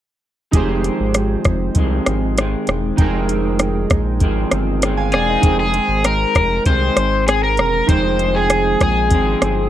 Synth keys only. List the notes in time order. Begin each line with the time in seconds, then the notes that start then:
0.52 D#4 G4 G#4
0.57 C5
2.97 D#4 G#4 G5
3.01 A#4
4.97 F5 G#5
5.13 D5 F5
5.29 C5 D#5
5.41 D#4 G#4 G5
5.46 C5
7.87 G#3 D#4 G5
7.92 C5